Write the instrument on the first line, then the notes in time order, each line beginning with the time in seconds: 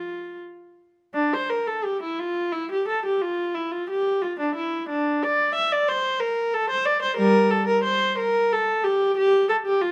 viola
Already playing: F4
1.14 D4
1.33 C5
1.50 A#4
1.67 A4
1.85 G4
2.02 E4
2.19 F4
2.52 E4
2.72 G4
2.88 A4
3.06 G4
3.22 F4
3.55 E4
3.72 F4
3.90 G4
4.22 F4
4.40 D4
4.55 E4
4.89 D4
5.23 D5
5.55 E5
5.72 D5
5.89 C5
6.20 A#4
6.54 A4
6.70 C5
6.85 D5
7.02 C5
7.17 G3 A#4
7.51 A4
7.67 A#4
7.84 C5
8.18 A#4
8.52 A4
8.85 G4
9.17 G4
9.49 A4
9.66 G4
9.82 F4